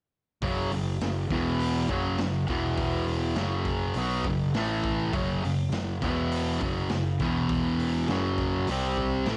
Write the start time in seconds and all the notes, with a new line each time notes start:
0.42 F#1 F#2 C#3 F#3, kick, open hi-hat
0.71 F#1 F#2 C#3, open hi-hat
1.01 F#1 F#2 C#3, snare, open hi-hat
1.30 E1 E2 B2 E3, kick, open hi-hat
1.60 open hi-hat
1.89 F#1 F#2 C#3 F#3, kick, open hi-hat
2.18 F#1 F#2 C#3, snare, open hi-hat
2.47 E1 E2 B2 E3, kick, open hi-hat
2.78 kick, open hi-hat
3.08 open hi-hat
3.36 F#1 F#2 C#3 F#3, snare, open hi-hat
3.65 kick, open hi-hat
3.94 B1 B2 F#3, open hi-hat
3.98 B3
4.24 F#1 F#2 C#3, kick, open hi-hat
4.54 A1 A2 E3 A3, snare, open hi-hat
4.84 kick, open hi-hat
5.13 F#1 F#2 C#3 F#3, kick, open hi-hat
5.43 F#1 F#2 C#3, open hi-hat
5.72 F#1 F#2 C#3, snare, open hi-hat
6.02 E1 E2 B2 E3, kick, open hi-hat
6.32 open hi-hat
6.60 F#1 F#2 C#3 F#3, kick, open hi-hat
6.89 F#1 F#2 C#3, snare, open hi-hat
7.19 E1 E2 B2 E3, kick, open hi-hat
7.49 kick, open hi-hat
7.79 open hi-hat
8.08 F#1 F#2 C#3 F#3, snare, open hi-hat
8.38 kick, open hi-hat
8.67 C2 C3 G3 C4, open hi-hat
8.97 kick, open hi-hat
9.26 A1 A2 E3, snare, open hi-hat
9.30 A3